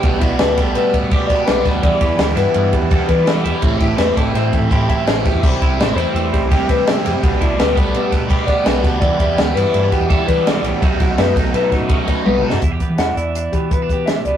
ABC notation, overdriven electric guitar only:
X:1
M:5/4
L:1/8
Q:1/4=167
K:Em
V:1 name="Overdriven electric guitar"
[B,,G,B,D] [G,B,D] [B,,G,B,D] [G,B,D]3 [B,,G,B,D] [G,B,D] [B,,G,B,D] [G,B,D] | [E,G,B,E] [G,B,E] [E,G,B,E] [G,B,E]3 [E,G,B,E] [G,B,E] [E,G,B,E] [G,B,E] | [A,,E,A,CE] [A,CE] [E,A,CE] [A,CE]3 [A,,E,A,CE] [A,CE] [A,,E,A,CE] [A,CE] | [C,G,CE] [G,CE] [C,G,CE] [G,CE]3 [C,G,CE] [G,CE] [C,G,CE] [G,CE] |
[B,,G,B,D] [G,B,D] [B,,G,B,D] [G,B,D]3 [B,,G,B,D] [G,B,D] [B,,G,B,D] [G,B,D] | [E,G,B,E] [G,B,E] [E,G,B,E] [G,B,E]3 [E,G,B,E] [G,B,E] [E,G,B,E] [G,B,E] | [B,,F,A,^D] [F,A,D] [B,,F,A,D] [F,A,D]3 [B,,F,A,D] [F,A,D] [B,,F,A,D] [F,A,D] | z8 z2 |]